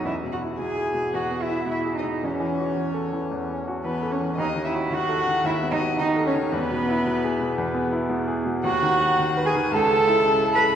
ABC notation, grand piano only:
X:1
M:4/4
L:1/8
Q:1/4=112
K:E
V:1 name="Grand piano" clef=bass
(3E,, B,, E (3B,, G B,, (3E,, B, E (3B,, G B,, | (3E,, E, F (3E, A E, (3E,, C F (3E, A E, | (3D,, D, F (3D, A D, (3D,, B, F (3D, A D, | (3E,, B,, E (3B,, G B,, (3E,, B, E (3B,, G B,, |
(3D,, D, F (3D, B D, (3C,, C, E (3C, A C, |]